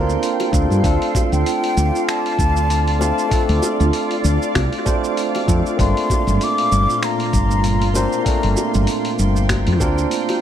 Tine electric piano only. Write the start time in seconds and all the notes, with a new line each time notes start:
Already playing: A#3 C4 D4 F4 A4 A#4 C5
0.52 A#3 C4 D4 F4 A4
0.82 A3 C4 D4 F4
0.87 A4
2.99 A3 C4 D4 F4 D5
3.29 A3 C4 D4 F4
3.33 A4
4.85 A3 C4 D4 F4 C5
5.47 A3 C4 D4 F4 A4
5.77 A#3 C4 D4 F4
5.81 A3
7.94 A#3 C4 D4 F4 C5
8.24 A#3 C4 D4 F4
8.28 A3
9.80 A#3 C4 D4 F4 A#4